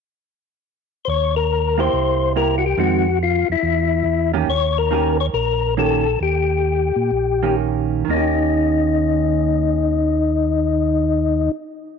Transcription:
1.05 tonewheel organ D#2 C5
1.09 tonewheel organ C#5
1.36 tonewheel organ A#4
1.78 hollow-body jazz guitar A#3 E4 G4, tonewheel organ C5
1.93 tonewheel organ C2
2.36 hollow-body jazz guitar A#3 E4 G4, tonewheel organ A#4
2.58 tonewheel organ F#4
2.66 tonewheel organ G4
2.77 tonewheel organ F2 F#4, hollow-body jazz guitar D#3 G#3 C4
3.23 tonewheel organ F4
3.49 tonewheel organ F2 E4
3.62 tonewheel organ E2
4.04 tonewheel organ E2
4.33 hollow-body jazz guitar D#3 A#3 C#4 G4
4.47 tonewheel organ D#2 C#5
4.78 tonewheel organ A#4
4.91 hollow-body jazz guitar D#3 A#3 C#4 G4
5.20 tonewheel organ C#5
5.33 tonewheel organ A#1 A#4
5.77 hollow-body jazz guitar D#3 A#3 C#4 G4, tonewheel organ A4
6.20 tonewheel organ D#2 G4
6.96 tonewheel organ A#2
7.11 tonewheel organ A#1
7.43 hollow-body jazz guitar D#3 A#3 C#4 G4
8.05 tonewheel organ D#2, hollow-body jazz guitar D#3
8.09 hollow-body jazz guitar A#3, tonewheel organ D#4
8.14 hollow-body jazz guitar C#4 G4

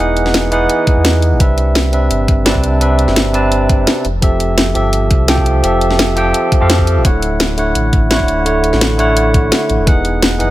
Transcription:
Already playing: tine electric piano E3
0.00 sub bass E1, tine electric piano B3 D#4 G#4 F#5
0.17 closed hi-hat
0.26 snare
0.34 snare, closed hi-hat
0.51 tine electric piano E3 B3 D#4 G#4 F#5, closed hi-hat
0.70 closed hi-hat
0.87 kick, closed hi-hat
0.97 sub bass E2
1.05 snare, closed hi-hat
1.22 closed hi-hat
1.32 sub bass G#1
1.39 sub bass C2, tine electric piano C3 C4 D4 B4 E5, kick, closed hi-hat
1.58 closed hi-hat
1.75 snare, closed hi-hat
1.92 tine electric piano C3 C4 D4 B4 E5, closed hi-hat
2.11 sub bass G1, closed hi-hat
2.28 sub bass G1, kick, closed hi-hat
2.45 tine electric piano C3 C4 D4 B4 A5, snare, closed hi-hat
2.55 sub bass C2, kick
2.64 closed hi-hat
2.80 tine electric piano C3 C4 D4 B4 E5, closed hi-hat
2.99 closed hi-hat
3.08 sub bass G1, snare
3.16 snare, closed hi-hat
3.33 tine electric piano C3 C4 D4 B4 A5, closed hi-hat
3.52 closed hi-hat
3.69 kick, closed hi-hat
3.87 snare, closed hi-hat
4.05 sub bass F1, closed hi-hat
4.14 sub bass F1
4.21 tine electric piano F3 C4 G4 A4 E5, kick, closed hi-hat
4.40 closed hi-hat
4.58 snare, closed hi-hat
4.74 sub bass G1, tine electric piano F3 C4 G4 A4 E5, closed hi-hat
4.93 closed hi-hat
5.11 sub bass C2, kick, closed hi-hat
5.28 tine electric piano F3 C4 G4 A4 G5, snare, closed hi-hat
5.38 kick
5.46 closed hi-hat
5.63 sub bass F1, tine electric piano F3 C4 G4 A4 E5, closed hi-hat
5.81 closed hi-hat
5.91 snare
5.99 snare, closed hi-hat
6.16 tine electric piano F3 C4 G4 A4 G5, closed hi-hat
6.34 closed hi-hat
6.52 kick, closed hi-hat
6.61 sub bass F2, tine electric piano F3 C4 G4 A4 F5
6.70 snare, closed hi-hat
6.79 kick
6.87 closed hi-hat
6.96 sub bass A1
7.04 sub bass D1, tine electric piano D3 A3 E4 C#5 F#5, kick, closed hi-hat
7.22 closed hi-hat
7.40 snare, closed hi-hat
7.57 tine electric piano D3 A3 E4 C#5 F#5, closed hi-hat
7.75 sub bass A1, closed hi-hat
7.93 sub bass A1, kick, closed hi-hat
8.10 tine electric piano D3 A3 E4 C#5 F#5, snare, closed hi-hat
8.20 sub bass D1, kick
8.28 closed hi-hat
8.45 tine electric piano D3 A3 E4 C#5 F#5, closed hi-hat
8.64 closed hi-hat
8.73 sub bass A1, snare
8.81 snare, closed hi-hat
8.98 tine electric piano D3 A3 E4 C#5 F#5, closed hi-hat
9.17 closed hi-hat
9.34 kick, closed hi-hat
9.52 snare, closed hi-hat
9.70 sub bass A1, closed hi-hat
9.79 sub bass E1
9.86 tine electric piano E3 B3 D#4 G#4 F#5, kick, closed hi-hat
10.05 closed hi-hat
10.22 snare, closed hi-hat
10.39 sub bass F#1, tine electric piano E3 B3 D#4 G#4 F#5, closed hi-hat

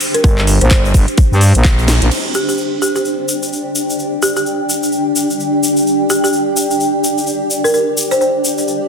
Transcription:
Already playing: ambient pad D4 G4 C5 G5
0.01 open hi-hat, shaker
0.14 marimba A#4, closed hi-hat, shaker
0.24 fm bass G1, marimba A#4, kick, closed hi-hat, shaker
0.38 clap, shaker
0.47 open hi-hat, shaker
0.61 fm bass A#1, marimba C5, closed hi-hat, shaker
0.70 fm bass G1, marimba C5, kick, clap, closed hi-hat, shaker
0.85 shaker
0.94 fm bass G1, kick, open hi-hat, shaker
1.08 closed hi-hat, shaker
1.17 kick, closed hi-hat, shaker
1.32 fm bass G2, shaker
1.41 open hi-hat, shaker
1.55 fm bass A#1, closed hi-hat, shaker
1.64 kick, clap, closed hi-hat, shaker
1.79 shaker
1.88 snare, open hi-hat, shaker
2.02 fm bass A#1, closed hi-hat, shaker
2.11 ambient pad D4, crash, shaker
2.34 marimba G4, ambient pad G4, shaker
2.49 marimba G4, shaker
2.57 ambient pad D5, shaker
2.82 marimba G4, shaker
2.96 marimba G4, ambient pad G5, shaker
3.05 shaker
3.28 shaker
3.43 shaker
3.53 shaker
3.75 shaker
3.90 shaker
3.99 shaker
4.22 marimba G4, shaker
4.36 marimba G4, shaker
4.46 shaker
4.69 shaker
4.83 shaker
4.92 shaker
5.16 shaker
5.30 shaker
5.40 shaker
5.63 shaker
5.77 shaker
5.87 shaker
6.10 marimba G4, shaker
6.24 marimba G4, shaker
6.33 shaker
6.57 shaker
6.71 shaker
6.80 shaker
7.04 shaker
7.18 shaker
7.27 shaker
7.50 shaker
7.64 marimba A#4, shaker
7.74 marimba A#4, shaker
7.97 shaker
8.11 marimba C5, shaker
8.21 marimba C5, shaker
8.45 shaker
8.58 shaker
8.68 shaker

